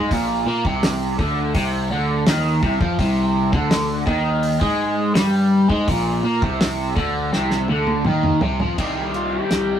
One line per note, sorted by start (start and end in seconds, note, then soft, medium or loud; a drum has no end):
0.00 0.10 G#3 loud
0.11 0.44 A#1 medium
0.11 0.46 A#2 loud
0.11 kick loud
0.11 open hi-hat medium
0.46 0.63 A#2 medium
0.46 0.64 A#3 loud
0.65 1.15 C2 medium
0.65 1.18 C3 loud
0.65 kick loud
0.83 snare loud
0.83 open hi-hat medium
1.19 1.52 D2 loud
1.19 1.54 D3 loud
1.19 kick medium
1.55 1.88 C2 medium
1.55 1.90 C3 loud
1.55 kick loud
1.55 open hi-hat medium
1.90 2.24 D2 medium
1.90 2.26 D3 loud
2.27 2.60 D#2 loud
2.27 2.62 D#3 medium
2.27 snare loud
2.27 open hi-hat medium
2.63 2.79 C2 medium
2.63 2.80 C3 loud
2.63 kick loud
2.80 2.97 F2 medium
2.80 2.97 F3 loud
2.80 kick loud
2.99 3.49 C2 loud
2.99 3.52 C3 loud
2.99 kick loud
2.99 open hi-hat soft
3.53 4.03 D2 medium
3.53 4.06 D3 medium
3.53 kick loud
3.71 snare loud
3.71 open hi-hat medium
4.06 4.57 D#2 loud
4.06 4.60 D#3 loud
4.06 kick loud
4.43 open hi-hat medium
4.60 5.12 G#2 loud
4.60 5.14 G#3 loud
4.60 kick loud
5.15 5.66 G2 medium
5.15 5.68 G3 loud
5.15 snare loud
5.15 open hi-hat medium
5.69 5.87 G#2 loud
5.69 5.86 G#3 loud
5.69 kick loud
5.88 6.22 A#1 medium
5.88 6.23 A#2 loud
5.88 kick loud
5.88 open hi-hat medium
6.23 6.40 A#2 medium
6.23 6.41 A#3 loud
6.42 6.93 C2 medium
6.42 6.96 C3 medium
6.42 kick loud
6.61 snare loud
6.61 open hi-hat medium
6.96 7.30 D2 medium
6.96 7.32 D3 loud
6.96 kick loud
7.32 7.66 C2 medium
7.32 7.68 C3 loud
7.32 snare medium
7.51 snare medium
7.68 8.02 D2 medium
7.68 8.05 D3 loud
7.68 high tom medium
7.87 high tom medium
8.05 8.39 D#2 loud
8.05 8.41 D#3 loud
8.05 mid tom medium
8.23 mid tom medium
8.41 8.58 C2 loud
8.41 8.59 C3 loud
8.41 floor tom medium
8.60 8.77 F2 medium
8.60 8.78 F3 loud
8.60 floor tom medium
8.78 9.38 C2 medium
8.78 9.80 C3 medium
8.78 9.80 D#3 medium
8.78 9.80 G3 medium
8.78 9.80 C4 medium
8.78 9.80 G4 medium
8.78 kick medium
8.78 crash medium
9.14 9.32 F4 medium
9.14 closed hi-hat medium
9.33 9.80 G4 loud
9.51 9.80 C2 medium
9.51 snare loud
9.51 closed hi-hat medium